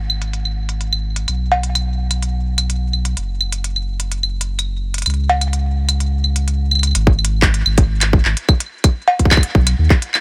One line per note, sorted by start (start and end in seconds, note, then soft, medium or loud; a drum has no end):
0.00 1.26 G#1 medium
0.10 claves medium
0.22 closed hi-hat medium
0.33 closed hi-hat medium
0.45 claves soft
0.69 closed hi-hat medium
0.81 closed hi-hat medium
0.93 claves medium
1.16 closed hi-hat medium
1.28 3.15 B1 medium
1.28 closed hi-hat medium
1.28 claves soft
1.52 cowbell medium
1.63 closed hi-hat medium
1.75 closed hi-hat medium
1.75 claves medium
2.11 closed hi-hat medium
2.11 claves soft
2.22 closed hi-hat medium
2.58 closed hi-hat medium
2.58 claves medium
2.70 closed hi-hat medium
2.93 claves soft
3.05 closed hi-hat medium
3.17 5.04 F#1 medium
3.17 closed hi-hat medium
3.41 claves medium
3.52 closed hi-hat medium
3.64 closed hi-hat medium
3.76 claves medium
4.00 closed hi-hat medium
4.12 closed hi-hat soft
4.23 claves medium
4.41 closed hi-hat medium
4.59 closed hi-hat medium
4.59 claves soft
4.94 closed hi-hat medium
4.98 closed hi-hat soft
5.02 closed hi-hat soft
5.06 6.93 C#2 medium
5.06 closed hi-hat soft
5.06 claves medium
5.10 closed hi-hat soft
5.14 closed hi-hat soft
5.29 cowbell medium
5.41 closed hi-hat medium
5.41 claves soft
5.53 closed hi-hat medium
5.89 closed hi-hat medium
5.89 claves medium
6.00 closed hi-hat soft
6.24 claves medium
6.36 closed hi-hat medium
6.48 closed hi-hat soft
6.71 claves medium
6.75 claves medium
6.79 closed hi-hat medium
6.79 claves soft
6.83 claves soft
6.87 claves soft
6.91 7.63 G#1 medium
6.91 closed hi-hat medium
6.91 claves soft
7.07 kick loud
7.19 claves medium
7.25 closed hi-hat medium
7.42 kick loud
7.42 clap loud
7.54 closed hi-hat medium
7.66 8.22 G#1 medium
7.66 claves medium
7.78 kick loud
7.78 closed hi-hat medium
8.01 clap medium
8.01 closed hi-hat loud
8.01 claves medium
8.13 kick loud
8.25 8.35 G#1 medium
8.25 clap medium
8.37 closed hi-hat medium
8.49 kick loud
8.49 claves medium
8.60 closed hi-hat medium
8.84 kick loud
8.84 closed hi-hat loud
8.84 claves medium
9.08 cowbell medium
9.19 kick medium
9.19 closed hi-hat medium
9.25 kick medium
9.31 kick medium
9.31 clap loud
9.31 claves medium
9.34 claves medium
9.36 kick loud
9.36 claves medium
9.38 claves soft
9.41 closed hi-hat medium
9.41 claves soft
9.55 9.75 B1 medium
9.55 kick loud
9.67 closed hi-hat loud
9.67 claves medium
9.78 9.88 D#2 medium
9.90 kick loud
9.90 clap medium
10.02 closed hi-hat medium
10.14 clap medium
10.14 claves medium